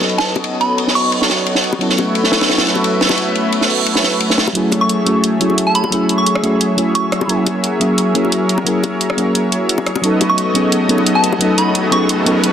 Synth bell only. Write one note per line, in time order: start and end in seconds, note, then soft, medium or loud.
0.18 0.25 A5 medium
0.61 0.81 B5 medium
0.95 1.21 C#6 medium
4.81 5.02 C#6 medium
5.67 5.73 A5 medium
5.75 5.81 B5 medium
5.84 5.89 B5 medium
6.18 6.39 C#6 medium
6.95 7.33 C#6 medium
10.29 10.50 C#6 medium
11.15 11.22 A5 medium
11.58 11.79 B5 medium
11.92 12.18 C#6 medium